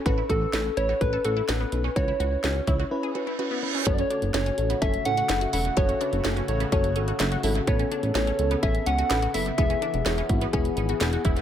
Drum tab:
HH |x-x-x-x-x-x-x-x-|x-x-x-x---------|xxxxxxxxxxxxxxox|xxxxxxxxxxxxxxox|
CP |----------------|----------------|------------x---|------------x---|
SD |----o-------o---|----o-----------|----o-------o---|----o-------o---|
BD |o-o-----o-------|o-----o---------|o-------o-------|o-------o-------|

HH |xxxxxxxxxxxxxxox|xxxxxxxxxxxxxxxx|
CP |------------x---|------------x---|
SD |----o-------o---|----o-------o---|
BD |o-------o-------|o-----o-o-----o-|